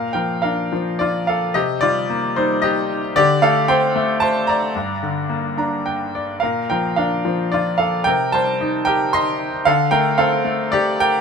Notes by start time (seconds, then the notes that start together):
Already playing: A#2 A#4 F5
0.13 F3 A#4 G5
0.42 D4 A#4 F5
0.72 F3
0.99 F4 D5
1.27 A4 F5
1.54 C3 G4 D#5
1.81 G3 F4 D5
2.10 A#3
2.36 G3 D#4 C5
2.62 G4 D#5
3.16 D3 G4 D5
3.42 A3 A4 F5
3.68 C4 C5 G5
3.96 A3
4.20 C5 A5
4.47 D5 A#5
4.75 G2
5.03 D3
5.29 A#3
5.57 D4 A#5
5.86 G5
6.15 D5
6.40 A#2 A#4 F5
6.70 F3 A#4 G5
6.96 D4 A#4 F5
7.25 F3
7.52 F4 D5
7.78 A4 F5
8.04 C3 A#4 G5
8.32 G3 C5 A5
8.61 D#4
8.85 G4 A#4 G5
9.13 D#5 C6
9.65 D3 A4 F5
9.91 A3 A#4 G5
10.18 C4 A4 F5
10.45 A3
10.72 G4 D5
11.00 A#4 G5